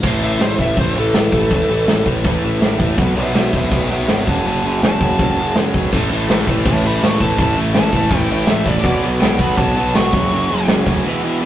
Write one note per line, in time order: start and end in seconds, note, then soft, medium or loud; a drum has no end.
0.03 0.21 A1 medium
0.03 0.22 A2 loud
0.03 0.22 E3 loud
0.03 0.23 A3 loud
0.03 kick loud
0.03 crash loud
0.21 0.39 A1 medium
0.21 0.40 A2 medium
0.21 0.41 E3 medium
0.21 0.41 A3 loud
0.21 0.41 E5 loud
0.40 0.57 A1 loud
0.40 0.60 A2 medium
0.40 0.60 E3 medium
0.40 0.60 A3 medium
0.40 0.59 C5 medium
0.40 snare loud
0.40 open hi-hat medium
0.58 0.76 A1 medium
0.58 0.76 A2 loud
0.58 0.77 E3 loud
0.58 0.76 A3 loud
0.58 0.78 E5 medium
0.58 kick medium
0.76 0.94 A1 medium
0.76 0.95 A2 medium
0.76 0.95 E3 medium
0.76 0.96 A3 medium
0.76 0.96 C5 medium
0.76 kick loud
0.76 open hi-hat medium
0.96 1.14 A1 medium
0.96 1.14 A2 medium
0.96 1.15 E3 medium
0.96 1.15 A3 medium
0.96 2.05 A4 medium
1.13 1.31 A1 medium
1.13 1.32 A2 medium
1.13 1.33 E3 medium
1.13 1.33 A3 loud
1.13 snare loud
1.13 open hi-hat medium
1.32 1.49 A1 medium
1.32 1.50 A2 medium
1.32 1.51 E3 medium
1.32 1.52 A3 loud
1.32 kick medium
1.51 1.68 A1 medium
1.51 1.68 A2 medium
1.51 1.69 E3 loud
1.51 1.69 A3 loud
1.51 kick loud
1.51 open hi-hat medium
1.69 1.87 A1 medium
1.69 1.88 A2 medium
1.69 1.88 E3 medium
1.69 1.89 A3 loud
1.87 2.05 A1 medium
1.87 2.04 A2 medium
1.87 2.05 E3 medium
1.87 2.05 A3 loud
1.87 snare loud
1.87 open hi-hat medium
2.05 2.23 A1 medium
2.05 2.24 A2 medium
2.05 2.25 E3 medium
2.05 2.25 A3 loud
2.05 kick medium
2.24 2.42 A1 loud
2.24 2.43 A2 medium
2.24 2.43 E3 medium
2.24 2.44 A3 medium
2.24 kick loud
2.24 open hi-hat medium
2.44 2.61 A1 medium
2.44 2.60 A2 medium
2.44 2.61 E3 medium
2.44 2.61 A3 medium
2.61 2.79 A1 medium
2.61 2.78 A2 loud
2.61 2.78 E3 loud
2.61 2.78 A3 loud
2.61 snare loud
2.61 open hi-hat medium
2.79 2.97 A1 loud
2.79 2.96 A2 medium
2.79 2.97 E3 medium
2.79 2.97 A3 loud
2.79 kick medium
2.97 3.15 B1 loud
2.97 3.13 B2 loud
2.97 3.15 F#3 loud
2.97 3.14 B3 loud
2.97 kick loud
2.97 open hi-hat medium
3.15 3.34 B1 medium
3.15 3.33 B2 loud
3.15 3.34 F#3 loud
3.15 3.33 B3 loud
3.15 3.36 C5 loud
3.15 3.35 E5 loud
3.34 3.53 B1 loud
3.34 3.51 B2 medium
3.34 3.52 F#3 loud
3.34 3.52 B3 loud
3.34 3.53 C5 medium
3.34 snare loud
3.34 open hi-hat medium
3.38 3.56 B3 medium
3.38 3.55 E5 medium
3.52 3.70 B1 medium
3.52 3.70 B2 medium
3.52 3.71 F#3 loud
3.52 3.71 B3 loud
3.52 3.72 C5 medium
3.52 kick medium
3.57 3.74 B3 loud
3.57 3.71 E5 medium
3.71 3.89 B1 loud
3.71 3.89 B2 medium
3.71 3.89 F#3 loud
3.71 3.90 B3 loud
3.71 3.89 E5 medium
3.71 3.90 G5 loud
3.71 kick loud
3.71 open hi-hat medium
3.90 4.08 B1 medium
3.90 4.07 B2 medium
3.90 4.08 F#3 medium
3.90 4.09 B3 medium
3.90 4.08 E5 medium
3.90 4.08 G5 medium
3.94 4.10 F#3 medium
4.08 4.26 G#1 medium
4.08 4.26 B2 medium
4.08 4.26 F#3 loud
4.08 4.27 B3 medium
4.08 4.26 E5 medium
4.08 4.27 G5 medium
4.08 snare loud
4.08 open hi-hat medium
4.27 4.44 F#1 loud
4.27 4.46 F#2 medium
4.27 4.46 C#3 loud
4.27 4.47 F#3 loud
4.27 4.45 F#5 medium
4.27 4.46 A5 medium
4.27 kick loud
4.45 4.62 F#1 medium
4.45 4.62 F#2 loud
4.45 4.64 C#3 loud
4.45 4.64 F#3 loud
4.45 4.63 F#5 medium
4.45 4.64 A5 loud
4.45 open hi-hat medium
4.64 4.81 F#1 medium
4.64 4.82 F#2 medium
4.64 4.82 C#3 medium
4.64 4.82 F#3 loud
4.64 4.83 F#5 medium
4.64 4.82 A5 loud
4.82 5.00 F#1 loud
4.82 5.00 F#2 medium
4.82 5.01 C#3 medium
4.82 5.02 F#3 medium
4.82 5.54 A5 medium
4.82 snare loud
4.82 open hi-hat medium
5.01 5.18 F#1 medium
5.01 5.19 F#2 loud
5.01 5.19 C#3 loud
5.01 5.19 F#3 loud
5.01 kick medium
5.18 5.36 F#1 medium
5.18 5.36 F#2 medium
5.18 5.37 C#3 medium
5.18 5.37 F#3 loud
5.18 kick loud
5.18 open hi-hat medium
5.37 5.55 F#1 medium
5.37 5.56 F#2 medium
5.37 5.56 C#3 medium
5.37 5.57 F#3 medium
5.55 5.73 F#1 medium
5.55 5.74 F#2 medium
5.55 5.74 C#3 medium
5.55 5.74 F#3 loud
5.55 snare loud
5.55 open hi-hat medium
5.74 5.92 B1 medium
5.74 5.92 F#2 medium
5.74 5.92 C#3 medium
5.74 5.92 F#3 loud
5.74 kick medium
5.92 6.09 A1 medium
5.92 7.20 A2 medium
5.92 6.10 A2 loud
5.92 7.20 E3 medium
5.92 6.11 E3 loud
5.92 7.21 A3 loud
5.92 6.11 A3 loud
5.92 7.20 C#4 loud
5.92 7.19 E4 loud
5.92 kick loud
5.92 crash loud
6.10 6.27 A1 medium
6.10 6.28 A2 medium
6.10 6.29 E3 medium
6.10 6.30 A3 loud
6.28 6.46 A1 loud
6.28 6.48 A2 medium
6.28 6.49 E3 loud
6.28 6.49 A3 loud
6.28 snare loud
6.28 open hi-hat medium
6.47 6.65 A1 medium
6.47 6.65 A2 medium
6.47 6.66 E3 medium
6.47 6.66 A3 loud
6.47 kick medium
6.65 6.83 A1 loud
6.65 6.83 A2 medium
6.65 6.85 E3 medium
6.65 6.85 A3 loud
6.65 6.84 C#5 medium
6.65 6.86 A5 loud
6.65 kick loud
6.65 open hi-hat medium
6.83 7.01 A1 medium
6.83 7.01 A2 medium
6.83 7.02 E3 loud
6.83 7.02 A3 loud
6.83 7.03 G5 medium
6.83 7.03 B5 medium
7.02 7.20 A1 medium
7.02 7.19 A2 loud
7.02 7.19 E3 medium
7.02 7.20 A3 loud
7.02 7.19 A5 medium
7.02 7.22 C#6 medium
7.02 snare loud
7.02 open hi-hat medium
7.20 7.37 A1 medium
7.20 7.37 A2 medium
7.20 7.37 E3 medium
7.20 7.38 A3 medium
7.20 7.38 C#4 medium
7.20 7.38 E4 medium
7.20 7.56 A5 loud
7.20 kick medium
7.24 7.37 A2 medium
7.38 7.56 A1 medium
7.38 7.55 A2 loud
7.38 8.66 A2 medium
7.38 8.66 E3 loud
7.38 7.55 E3 loud
7.38 7.56 A3 loud
7.38 8.66 A3 medium
7.38 8.66 C#4 loud
7.38 8.65 E4 loud
7.38 kick loud
7.38 open hi-hat medium
7.56 7.75 A1 medium
7.56 7.72 A2 medium
7.56 7.73 E3 loud
7.56 7.73 A3 loud
7.73 7.92 A1 medium
7.73 7.92 A2 medium
7.73 7.92 E3 loud
7.73 7.92 A3 loud
7.73 8.18 A5 loud
7.73 snare loud
7.73 open hi-hat medium
7.92 8.10 A1 medium
7.92 8.10 A2 loud
7.92 8.10 E3 loud
7.92 8.10 A3 loud
7.92 kick medium
8.10 8.29 A1 medium
8.10 8.27 A2 medium
8.10 8.28 E3 medium
8.10 8.29 A3 loud
8.10 kick loud
8.10 open hi-hat medium
8.18 8.28 G5 loud
8.29 8.48 A1 medium
8.29 8.46 A2 medium
8.29 8.46 E3 loud
8.29 8.47 A3 medium
8.33 8.50 G5 loud
8.46 8.65 A1 medium
8.46 8.64 A2 medium
8.46 8.65 E3 medium
8.46 8.65 A3 loud
8.46 8.67 E5 medium
8.46 snare loud
8.46 open hi-hat medium
8.65 8.84 A1 loud
8.65 8.83 A2 loud
8.65 8.83 E3 loud
8.65 8.85 E3 medium
8.65 8.83 A3 loud
8.65 8.85 A3 medium
8.65 8.85 C#4 medium
8.65 8.84 E4 medium
8.65 9.03 D5 loud
8.65 kick medium
8.70 8.86 A2 medium
8.83 9.02 B1 loud
8.83 9.02 B2 loud
8.83 10.12 B2 medium
8.83 9.01 F#3 loud
8.83 10.13 F#3 medium
8.83 9.02 B3 loud
8.83 kick loud
8.83 open hi-hat medium
8.88 10.13 B3 loud
8.88 10.14 D4 loud
9.03 9.20 B1 medium
9.03 9.18 B2 loud
9.03 9.19 F#3 medium
9.03 9.20 B3 loud
9.20 9.38 B1 loud
9.20 9.38 B2 loud
9.20 9.38 F#3 loud
9.20 9.39 B3 loud
9.20 9.39 G5 loud
9.20 snare loud
9.20 open hi-hat medium
9.38 9.57 B1 medium
9.38 9.57 B2 medium
9.38 9.58 F#3 loud
9.38 9.58 B3 loud
9.38 9.57 B5 medium
9.38 kick medium
9.57 9.75 B1 loud
9.57 9.74 B2 medium
9.57 9.75 F#3 medium
9.57 9.75 B3 loud
9.57 9.94 A5 loud
9.57 kick loud
9.57 open hi-hat medium
9.76 9.94 B1 medium
9.76 9.94 B2 medium
9.76 9.94 F#3 loud
9.76 9.95 B3 loud
9.94 10.12 B1 medium
9.94 10.12 B2 medium
9.94 10.12 F#3 loud
9.94 10.13 B3 loud
9.94 10.66 C#6 loud
9.94 snare loud
9.94 open hi-hat medium
10.13 10.30 F#1 medium
10.13 11.03 F#2 loud
10.13 10.31 F#2 loud
10.13 11.03 C#3 loud
10.13 10.31 C#3 loud
10.13 10.33 F#3 loud
10.13 11.04 F#3 loud
10.13 11.04 A3 loud
10.13 11.05 C#4 loud
10.13 kick loud
10.32 10.49 F#1 loud
10.32 10.49 F#2 loud
10.32 10.50 C#3 loud
10.32 10.51 F#3 loud
10.32 open hi-hat medium
10.51 10.67 F#1 medium
10.51 10.68 F#2 loud
10.51 10.69 C#3 loud
10.51 10.69 F#3 loud
10.67 10.85 F#1 loud
10.67 10.86 F#2 loud
10.67 10.87 C#3 loud
10.67 10.87 F#3 loud
10.67 snare loud
10.67 open hi-hat medium
10.86 11.03 D2 medium
10.86 11.04 F#2 medium
10.86 11.04 C#3 loud
10.86 11.04 F#3 loud
10.86 kick medium
11.04 11.22 E2 loud
11.04 11.22 B2 loud
11.04 11.45 E3 loud
11.04 11.22 E3 loud
11.04 11.45 G#3 loud
11.04 11.45 B3 loud
11.04 11.45 E4 loud
11.23 11.40 E2 medium
11.23 11.39 B2 loud
11.23 11.40 E3 loud
11.40 11.45 E2 loud
11.40 11.45 B2 loud
11.40 11.45 E3 loud